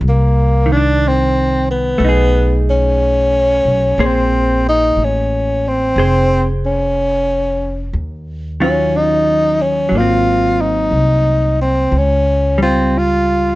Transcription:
0.01 C2
0.08 A#3
0.66 D#3
0.72 D4
0.77 D4
1.08 C4
1.71 B3
1.98 B1 A3
2.04 D#4
2.09 G#4
2.70 C#4
3.65 B1
3.98 A#1 A#3 G#4 C5
4.06 C4
4.69 D#4
4.96 A1
5.04 C#4
5.68 C4
5.96 F1 G#4 C5
6.66 C#4
7.93 D#2
8.60 D#3 F#3 C#4 F4
8.96 D#4
9.61 C#4
9.89 G#1 F#3
9.95 A#3 F4
10.01 C4
10.61 D#4
10.91 C2
11.61 C4
11.92 C#2
11.98 C#4
12.58 G3
12.62 C4 F4
12.98 F4

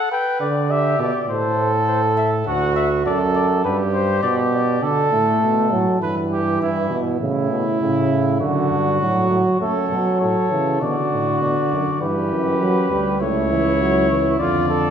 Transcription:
Already playing: A4 F#5
0.12 B4 G5
0.40 D3 D5
0.70 G4 E5
0.99 B2 D5
1.29 A2 A4 C5
1.88 C5
2.17 E5
2.46 D2 F#4 F#5
2.76 E5
3.06 F#2 A4 D5
3.35 D5
3.64 G2 G4 B4
3.93 C5
4.23 B2 D5
4.54 D5
4.83 D3 A4
5.12 A2 A3
5.42 B2
5.72 A2 F#3
6.01 G2 E3 B4
6.32 G4
6.61 G2 E4
6.90 B2
7.20 A2 C#3 E4
7.51 B2
7.80 A2 C#3
8.11 A2
8.40 F#2 D3 F#4
8.71 G2
9.01 A2 F#3
9.30 A2
9.61 F#2 A3 A4 C#5
9.91 B2 F#3
10.21 A2 A4 C#5
10.51 C#3 E3
10.81 B2 D3 F#4 D5
11.12 A2
11.41 B2 D5
11.72 F#2
12.01 G2 E3 G4 B4
12.32 F#2
12.61 F#3
12.91 D2 G3
13.20 C#2 A3 E4 C#5
13.51 E3
13.81 F#3
14.10 E3
14.39 F2 D3 F4 D5
14.69 A4

